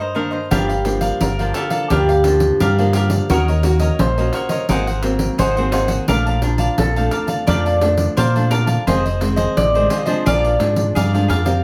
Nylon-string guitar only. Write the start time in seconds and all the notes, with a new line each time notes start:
Already playing: G2
0.15 D#3 A#3 D4
0.51 G2 F3 A#3 D4
0.85 F3 A#3 D4
1.21 D3
1.40 F3 A#3 D4
1.91 G2 F3 A#3 D4
2.25 F3 A#3 D4
2.61 D3
2.78 F3 A#3 D4
3.30 D#3 A#3 C#4 F#4
3.64 A#3 C#4 F#4
4.00 A#2
4.18 A#3 C#4 F#4
4.69 G#2 F#3 A#3 C4
5.03 F#3 A#3 C4
5.39 D#3
5.57 F#3 A#3 C4
6.09 A#2 F3 A3 D4
6.42 F3 D4
6.78 F2
6.96 F3 A3 D4
7.48 A#2 F3 A3 D4
7.81 F3 A3 D4
8.36 F3 A3 D4
8.87 F2 D#3 G#3 C4
9.21 D#3 G#3 C4
9.57 C3
9.75 D#3 G#3 C4
10.06 F3 G#3 D4
10.26 A#2
10.60 F3 G#3 D4
10.96 F2
11.14 F3 G#3 D4
11.45 A#3 C4 G4